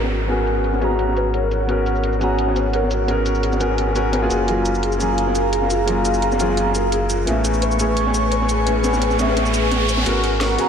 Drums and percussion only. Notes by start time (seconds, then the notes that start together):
0.03 snare
0.12 closed hi-hat, ride, cabasa
0.29 closed hi-hat, ride
0.46 closed hi-hat, ride, cabasa
0.56 cabasa
0.64 closed hi-hat, ride
0.73 snare, cabasa
0.82 closed hi-hat, ride, cabasa
0.90 snare
0.99 closed hi-hat, ride
1.08 snare
1.17 closed hi-hat, ride, cabasa
1.33 closed hi-hat, ride
1.51 closed hi-hat, ride, cabasa
1.60 ride
1.69 closed hi-hat, ride
1.86 closed hi-hat, ride, cabasa
1.95 cabasa
2.04 closed hi-hat, ride
2.13 cabasa
2.21 closed hi-hat, ride, cabasa
2.39 closed hi-hat, open hi-hat
2.47 snare
2.56 closed hi-hat, ride, cabasa
2.73 closed hi-hat, ride
2.83 snare
2.91 closed hi-hat, ride, cabasa
3.08 closed hi-hat, ride
3.26 closed hi-hat, ride, cabasa
3.35 cabasa
3.43 closed hi-hat, ride
3.52 snare, cabasa
3.60 closed hi-hat, ride, cabasa
3.70 snare
3.78 closed hi-hat, ride
3.87 snare
3.96 closed hi-hat, ride, cabasa
4.13 snare, closed hi-hat, ride
4.30 closed hi-hat, ride, cabasa
4.48 closed hi-hat, ride
4.65 closed hi-hat, ride, cabasa
4.75 cabasa
4.83 closed hi-hat, ride
4.92 cabasa
5.00 closed hi-hat, ride, cabasa
5.18 closed hi-hat, open hi-hat
5.27 snare
5.35 closed hi-hat, ride, cabasa
5.53 closed hi-hat, ride
5.62 snare
5.70 closed hi-hat, ride, cabasa
5.88 closed hi-hat, ride
6.05 closed hi-hat, ride, cabasa
6.14 cabasa
6.22 closed hi-hat, ride
6.32 snare, cabasa
6.40 closed hi-hat, ride, cabasa
6.49 snare
6.57 closed hi-hat, ride
6.66 snare
6.75 closed hi-hat, ride, cabasa
6.92 closed hi-hat, ride
7.10 closed hi-hat, ride, cabasa
7.18 ride
7.27 closed hi-hat, ride
7.45 closed hi-hat, ride, cabasa
7.54 cabasa
7.62 closed hi-hat, ride
7.71 cabasa
7.79 closed hi-hat, ride, cabasa
7.97 closed hi-hat, open hi-hat
8.06 snare
8.14 closed hi-hat, ride, cabasa
8.31 closed hi-hat, ride
8.41 snare
8.49 closed hi-hat, ride, cabasa
8.67 closed hi-hat, ride
8.84 snare, closed hi-hat, ride, cabasa
8.93 snare, ride, cabasa
8.97 snare, ride
9.02 closed hi-hat, ride
9.10 snare, cabasa
9.19 snare, closed hi-hat, ride, cabasa
9.27 snare, ride
9.37 snare, closed hi-hat, ride
9.46 snare, cabasa
9.54 closed hi-hat, ride, cabasa
9.71 snare, closed hi-hat, ride
9.80 snare
9.89 closed hi-hat, ride, cabasa
9.97 snare, ride
10.06 closed hi-hat, ride
10.23 closed hi-hat, ride
10.41 snare, closed hi-hat, ride
10.58 closed hi-hat, ride